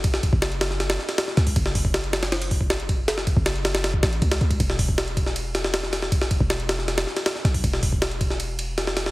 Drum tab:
RD |x-x-xxx-xx-xx-x-|x---xxxxxx--xxx-|x-x-xxxxx-xxxxxx|x---xxx-x-x-x-x-|
HH |---------------o|--o-------o-----|----------------|--o-------------|
SD |-o--o-ooooooooo-|-o--o-ooo---o---|oo--o-ooo-o--o--|-o--o--o--oooooo|
BD |o-oo-----------o|o-oo------oo--o-|--oo-----o--o--o|o-oo--o---------|

RD |x-x-xxx-xx-xx-x-|x---xxx-x-x-x-x-|
HH |---------------o|--o-------------|
SD |-o--o-ooooooooo-|-o--o--o----oooo|
BD |o-oo-----------o|o-oo--o---------|